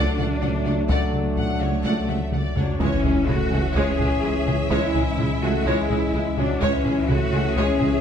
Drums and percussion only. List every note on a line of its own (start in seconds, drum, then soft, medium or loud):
0.18 taiko low-mid medium
0.42 taiko low-mid medium
0.89 taiko loud
1.38 taiko low-mid medium
2.08 taiko mid medium
2.32 taiko mid medium
2.56 taiko low medium
2.80 taiko medium
3.04 taiko low-mid medium
3.28 taiko low-mid medium
3.99 taiko low-mid medium
4.47 taiko low-mid medium
4.71 taiko loud
4.95 taiko low-mid medium
5.19 taiko low-mid medium
5.90 taiko low-mid medium
6.38 taiko low-mid soft
6.62 taiko loud
6.86 taiko low-mid medium
7.09 taiko low-mid medium
7.81 taiko low-mid medium